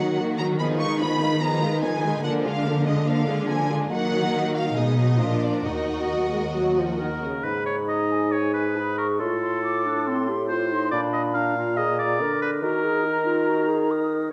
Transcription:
Already playing: D#3 F#3 D#4 F#4 F#5
0.18 D#3 A#3 F#4 A#4
0.38 F#3 D#4 F#4 A#5
0.59 F3 B3 D#4 G#4 B5
0.79 G#3 D#4 F4 B4 C#6
0.99 F3 B3 D#4 G#4 B5
1.21 G#3 D#4 F4 B4
1.41 F3 B3 D#4 G#4 A#5
1.62 G#3 D#4 F4 B4
1.82 F3 B3 D#4 G#4 G#5
2.03 G#3 D#4 F4 B4
2.24 D3 F3 A#3 D4 A#4 F#5
2.44 G#3 D4 F4 G#4 F5
2.65 F3 A#3 D4 A#4
2.86 G#3 D4 F4 G#4 D#5
3.06 F3 A#3 D4 A#4 F5
3.27 G#3 D4 F4 G#4
3.48 F3 A#3 D4 A#4 G#5
3.70 G#3 D4 F4 G#4
3.91 D#3 F#3 A#3 D#4 A#4 F#5
4.55 F5
4.76 B2 G#3 D#4 G#4 D#5
4.98 F#3
5.20 A#2 F3 D4 F4 A#4
5.43 D5
5.64 D#2 D#3 D#4 F#4 A#4 D#5
6.10 F#3
6.32 G#3
6.55 F#3
6.77 F3
6.99 D#3 A#4
7.23 C#3
7.44 G#2 D#4 B4 B5
7.66 C#5
7.88 D#5 A#5
8.11 G#5
8.32 C#5 G#5
8.54 B4
8.77 G#4 B5
8.98 A#4 C#6
9.19 A2 F4 A4 C6
9.42 C6
9.63 F4 D6
9.86 D4
10.07 C4 C6
10.29 G4
10.49 F4 C5 C6
10.72 D#4
10.91 A#2 D4 D5 B5
11.13 D#5
11.34 D4 F5 A#5
11.56 F4
11.77 G#4 D#5
11.99 D5
12.20 D3 A#4
12.42 B4
12.62 D#3 F#4 A#4 A#5
12.84 G#4
13.05 D#4 A#5
13.26 F4
13.48 F#4
13.68 G#4
13.89 A#4 D#6

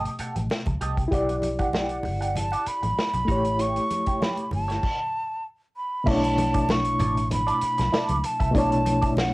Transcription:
Already playing: B2 A3 G4 D#5 D#6
0.05 muted clean electric guitar stroke, closed hi-hat
0.19 G4 A4 F#5, muted fingered electric bass stroke, closed hi-hat
0.36 A1, muted clean electric guitar stroke, closed hi-hat, high conga
0.50 snare, muted conga
0.66 C#2, muted clean electric guitar stroke, kick, closed hi-hat, muted conga, high conga
0.81 C2 G4 A4 D#5, closed hi-hat
0.97 muted clean electric guitar stroke, kick, closed hi-hat
1.08 E4 G4, kick
1.12 B1 D5 F#5, closed hi-hat
1.29 closed hi-hat, muted conga
1.42 muted clean electric guitar stroke, closed hi-hat, high conga
1.59 G4 D5 F#5, kick, closed hi-hat
1.73 G4 D5 F#5, snare, high conga
1.89 closed hi-hat
2.03 G1, muted clean electric guitar stroke, open hi-hat, high conga, low conga
2.21 G4 D5 F#5, closed hi-hat
2.35 A5, muted clean electric guitar stroke, closed hi-hat, muted conga, high conga, low conga
2.51 G4 D5 F#5, closed hi-hat, muted conga
2.66 B5, muted clean electric guitar stroke, muted fingered electric bass stroke, closed hi-hat
2.83 A1, muted clean electric guitar stroke, closed hi-hat, high conga
2.99 snare
3.14 B1, muted clean electric guitar stroke, closed hi-hat, muted conga, high conga
3.25 A1 A3 E4 G4, kick, closed hi-hat
3.29 G4 C#5
3.45 muted clean electric guitar stroke, closed hi-hat
3.59 E4 G4 C#5 C#6, closed hi-hat
3.76 closed hi-hat, muted conga
3.90 muted clean electric guitar stroke, closed hi-hat, high conga
4.06 E4 G4 C#5, kick, closed hi-hat
4.21 E4 G4 C#5 B5, snare, high conga
4.37 closed hi-hat, muted conga
4.51 G1 A5, muted clean electric guitar stroke, open hi-hat, high conga, low conga
4.68 E4 G4 C#5, snare, closed hi-hat
4.83 kick, crash
5.77 B5
6.04 B1 B2 A3 C#4 E4 A4 D5, kick, crash
6.09 E4 C#5 A5
6.14 D4
6.23 muted clean electric guitar stroke, closed hi-hat, muted conga
6.38 muted clean electric guitar stroke, closed hi-hat, high conga
6.54 E4 A4 D5, kick, closed hi-hat
6.69 C#6, muted clean electric guitar stroke, snare, muted conga, high conga
6.85 closed hi-hat
6.99 A1 E4 A4 D5, closed hi-hat, high conga, low conga
7.16 muted clean electric guitar stroke, closed hi-hat
7.31 B5, muted clean electric guitar stroke, closed hi-hat, muted conga, high conga, low conga
7.47 E4 A4 D5, closed hi-hat
7.61 muted clean electric guitar stroke, muted fingered electric bass stroke, closed hi-hat
7.78 B1, muted clean electric guitar stroke, snare, closed hi-hat, high conga
7.92 E4 A4 D5, muted fingered electric bass stroke, snare
8.09 C#2, closed hi-hat, high conga
8.23 A5, muted clean electric guitar stroke, closed hi-hat
8.40 C2 E4 A4 E5, kick, closed hi-hat
8.51 B1 B2 A3 D4 E4 A4, kick, closed hi-hat
8.55 E4 C#5 D5 A5, muted conga
8.71 muted clean electric guitar stroke, closed hi-hat
8.85 muted clean electric guitar stroke, closed hi-hat, high conga
9.02 E4 A4 D5, kick, closed hi-hat
9.16 F#5, muted clean electric guitar stroke, snare, muted conga, high conga

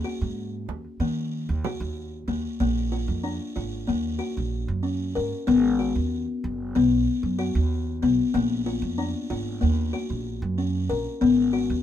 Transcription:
0.04 F#4, frame drum
0.21 G#2
0.68 D#2, frame drum
1.00 D#3 A#3
1.49 D#2
1.64 F#4, frame drum
1.80 D#2
1.97 frame drum
2.28 D#2 A#3, frame drum
2.60 A#1 A#3
2.92 F4
3.08 F2
3.24 D4
3.56 G#1 F4
3.87 D#2 A#3
4.19 F#4
4.37 A#1
4.68 F#2
4.83 C#4
5.15 G#2 A#4
5.47 G#1 B3
5.79 F#4
5.95 D#2
6.44 F#1
6.75 B1 B3
7.23 F#2
7.39 F#4
7.55 D#2
8.03 B1 B3
8.34 A#1 A#3
8.66 F4
8.82 F2
8.98 D4
9.30 G#1 F4
9.61 D#2 A#3
9.93 F#4
10.10 A#1
10.42 F#2
10.58 C#4
10.90 A#1 A#4
11.21 G#1 B3
11.53 F#4
11.70 D#2

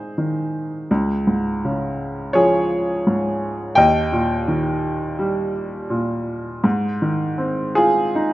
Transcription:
Already playing: G#2 D#3 C4 D#4 G#4 C5
0.18 D#3
0.91 C#2
1.27 G#2
1.65 C#3
2.33 F3 G#4 C#5
3.07 G#2
3.75 D#2 D#5 G5
4.12 A#2
4.48 D#3
5.19 G3
5.90 A#2
6.64 G#2
7.02 D#3
7.38 C4
7.75 F4 G#4
8.15 D#4

